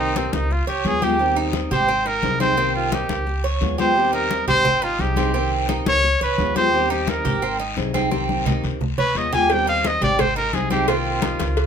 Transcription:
Already playing: upright bass C2, steel-string acoustic guitar C3 D#3 A#3 C4 G4, cuban tres C4
0.00 trumpet D#4
0.15 steel-string acoustic guitar D#3 A#3 C4 G4, trumpet C4, cuban tres D#4, high conga, short guiro
0.33 upright bass C#2, trumpet D#4, high conga, short guiro
0.50 trumpet F4, muted steel-string acoustic guitar stroke, high conga, long guiro
0.67 upright bass C#2, trumpet G4, cuban tres C#5, high conga
0.85 upright bass D#2, steel-string acoustic guitar G#3 B3 F4 G#4, trumpet G#4, high conga, short guiro
1.02 steel-string acoustic guitar G#3 B3 F4 G#4, cuban tres G4, trumpet G4, high conga, short guiro
1.19 steel-string acoustic guitar D#3 G3 C4 G4, high conga, long guiro
1.36 cuban tres D#4, high conga
1.53 steel-string acoustic guitar D#3 G3 C4 G4, high conga, short guiro
1.71 upright bass G#1, cuban tres G4, trumpet C5, high conga, low conga, short guiro
1.88 cuban tres C4, muted steel-string acoustic guitar stroke, high conga, long guiro
2.06 cuban tres D#4, trumpet A#4, high conga
2.22 upright bass C2, steel-string acoustic guitar G3 C4 D#4 G#4, high conga, short guiro
2.40 steel-string acoustic guitar G3 C4 D#4 G#4, cuban tres C4, trumpet C5, high conga, short guiro
2.56 steel-string acoustic guitar C3 D#3 A#3 C4 G4, cuban tres C4, high conga, long guiro
2.75 trumpet F4, high conga
2.91 steel-string acoustic guitar D#3 A#3 C4 G4, cuban tres D#4, trumpet G4, high conga, short guiro
3.09 upright bass C#2, high conga, short guiro
3.26 muted steel-string acoustic guitar stroke, high conga, long guiro
3.44 cuban tres C#5, high conga
3.61 upright bass D#2, steel-string acoustic guitar G#3 B3 F4 G#4, high conga, short guiro
3.78 steel-string acoustic guitar G#3 B3 F4 G#4, cuban tres G4, trumpet C5, high conga, short guiro
3.96 steel-string acoustic guitar D#3 G3 C4 G4, high conga, long guiro
4.13 cuban tres D#4, trumpet A#4, high conga
4.30 steel-string acoustic guitar D#3 G3 C4 G4, high conga, short guiro
4.47 upright bass G#1, cuban tres G4, trumpet C5, high conga, low conga, short guiro
4.65 cuban tres C4, muted steel-string acoustic guitar stroke, high conga, low conga, long guiro
4.82 cuban tres D#4, trumpet F4, high conga
4.99 upright bass C2, steel-string acoustic guitar G3 C4 D#4 G#4, trumpet G4, high conga, short guiro
5.16 steel-string acoustic guitar G3 C4 D#4 G#4, cuban tres C4, high conga, short guiro
5.34 steel-string acoustic guitar C3 D#3 A#3 C4 G4, cuban tres C4, high conga, long guiro
5.52 high conga
5.69 steel-string acoustic guitar D#3 A#3 C4 G4, cuban tres D#4, high conga, short guiro
5.86 upright bass C#2, trumpet C#5, high conga, short guiro
6.03 muted steel-string acoustic guitar stroke, high conga, long guiro
6.21 upright bass C#2, trumpet B4, cuban tres C#5, high conga
6.38 upright bass D#2, steel-string acoustic guitar G#3 B3 F4 G#4, high conga, short guiro
6.55 steel-string acoustic guitar G#3 B3 F4 G#4, cuban tres G4, trumpet C5, high conga, short guiro
6.72 steel-string acoustic guitar D#3 G3 C4 G4, high conga, long guiro
6.90 cuban tres D#4, trumpet G4, high conga
7.08 steel-string acoustic guitar D#3 G3 C4 G4, trumpet A#4, high conga, short guiro
7.25 upright bass G#1, cuban tres G4, high conga, low conga, short guiro
7.42 cuban tres C4, muted steel-string acoustic guitar stroke, long guiro
7.59 cuban tres D#4, high conga
7.77 upright bass C2, steel-string acoustic guitar G3 C4 D#4 G#4, high conga, short guiro
7.94 steel-string acoustic guitar G3 C4 D#4 G#4, cuban tres C4, high conga, short guiro
8.10 steel-string acoustic guitar C3 D#3 A#3 C4 G4, cuban tres C4, high conga, long guiro
8.29 high conga
8.46 steel-string acoustic guitar D#3 A#3 C4 G4, cuban tres D#4, low conga, short guiro
8.63 upright bass C#2, low conga, short guiro
8.80 muted steel-string acoustic guitar stroke, low conga, long guiro
8.98 upright bass C#2, trumpet B4, cuban tres C#5, low conga
9.15 upright bass D#2, steel-string acoustic guitar G#3 B3 F4 G#4, trumpet D#5, short guiro
9.33 steel-string acoustic guitar G#3 B3 F4 G#4, cuban tres G4, trumpet G#5, low conga, short guiro
9.50 steel-string acoustic guitar D#3 G3 C4 G4, trumpet G5, cowbell, high conga, long guiro
9.67 cuban tres D#4, trumpet F5, high conga
9.84 steel-string acoustic guitar D#3 G3 C4 G4, trumpet D#5, cowbell, high conga, short guiro
10.01 upright bass G#1, cuban tres G4, trumpet D5, cowbell, high conga, low conga, short guiro
10.19 cuban tres C4, trumpet C5, muted steel-string acoustic guitar stroke, cowbell, high conga, low conga, long guiro
10.36 cuban tres D#4, trumpet A#4, high conga
10.53 upright bass C2, steel-string acoustic guitar G3 C4 D#4 G#4, trumpet G#4, cowbell, high conga, short guiro
10.70 steel-string acoustic guitar G3 C4 D#4 G#4, cuban tres C4, trumpet G4, high conga, short guiro
10.88 steel-string acoustic guitar C3 D#3 A#3 C4 G4, cuban tres C4, trumpet F4, cowbell, high conga, long guiro
11.05 high conga
11.22 steel-string acoustic guitar D#3 A#3 C4 G4, cuban tres D#4, cowbell, high conga, short guiro
11.40 upright bass C#2, cowbell, high conga, short guiro
11.57 muted steel-string acoustic guitar stroke, cowbell, high conga, long guiro

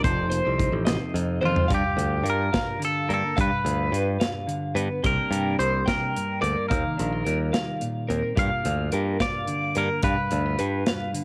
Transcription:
0.03 picked electric bass F1, clean electric guitar F2 F3 C4 D#4 A4 C5 D5, kick, closed hi-hat
0.30 clean electric guitar A#3 C5, closed hi-hat
0.45 picked electric bass C2, clean electric guitar C4
0.58 clean electric guitar D#4, kick, closed hi-hat
0.72 picked electric bass A1
0.85 clean electric guitar C3 D#5, snare, closed hi-hat
1.14 picked electric bass F2, clean electric guitar D#4, closed hi-hat
1.41 picked electric bass F2, clean electric guitar A#3 C5, high tom
1.45 clean electric guitar F4
1.55 clean electric guitar C4, floor tom
1.68 clean electric guitar G2 F5, picked electric bass G2, kick, closed hi-hat
1.75 clean electric guitar G4
1.97 picked electric bass D2, clean electric guitar F4, closed hi-hat
2.24 picked electric bass G2, clean electric guitar G3 A#4, closed hi-hat
2.30 clean electric guitar A#4
2.53 clean electric guitar F5, kick, snare, closed hi-hat
2.79 clean electric guitar D3, closed hi-hat
2.85 clean electric guitar A4
3.08 picked electric bass G2, clean electric guitar A#3 A#4, closed hi-hat
3.14 clean electric guitar A4
3.36 clean electric guitar G2 F5, picked electric bass G2, kick, closed hi-hat
3.41 clean electric guitar B4
3.65 picked electric bass D2, clean electric guitar F4, closed hi-hat
3.91 picked electric bass G2, clean electric guitar G3 B4, closed hi-hat
4.20 clean electric guitar F5, snare, closed hi-hat
4.47 clean electric guitar D3, closed hi-hat
4.75 picked electric bass G2, clean electric guitar B3 B4, closed hi-hat
5.03 picked electric bass C2, clean electric guitar C3 G3 A#3 D4 G4 A#4 G5, kick, closed hi-hat
5.31 picked electric bass G2, clean electric guitar D4, closed hi-hat
5.59 picked electric bass C2, clean electric guitar G3 C5, closed hi-hat
5.86 clean electric guitar A#4 G5, kick, snare, closed hi-hat
6.16 clean electric guitar G2, closed hi-hat
6.41 picked electric bass D2, clean electric guitar A#3 A#4 D5, closed hi-hat
6.68 picked electric bass D#2, clean electric guitar D#3 A#4 F5, kick, closed hi-hat
6.97 picked electric bass A#1, clean electric guitar D4, closed hi-hat
7.12 clean electric guitar F4
7.25 picked electric bass D#2, clean electric guitar G3 A#4, closed hi-hat
7.53 clean electric guitar F5, snare, closed hi-hat
7.81 clean electric guitar A#2, closed hi-hat
8.09 picked electric bass D#2, clean electric guitar C4 A#4, closed hi-hat
8.35 clean electric guitar G2 G3 A#3 F4 A#4 F5, picked electric bass G2, kick, closed hi-hat
8.39 clean electric guitar F5
8.64 picked electric bass D2, clean electric guitar F4, closed hi-hat
8.92 picked electric bass G2, clean electric guitar G3 A#4, closed hi-hat
9.20 clean electric guitar D5 F5, kick, snare, closed hi-hat
9.47 clean electric guitar D3, closed hi-hat
9.75 picked electric bass G2, clean electric guitar A#3 A#4, closed hi-hat
10.02 clean electric guitar G2 B4 F5, picked electric bass G2, kick, closed hi-hat
10.31 picked electric bass D2, clean electric guitar D4, closed hi-hat
10.46 clean electric guitar F4
10.58 picked electric bass G2, clean electric guitar G3 B4, closed hi-hat
10.86 clean electric guitar F5, snare, closed hi-hat
11.14 clean electric guitar D3, closed hi-hat

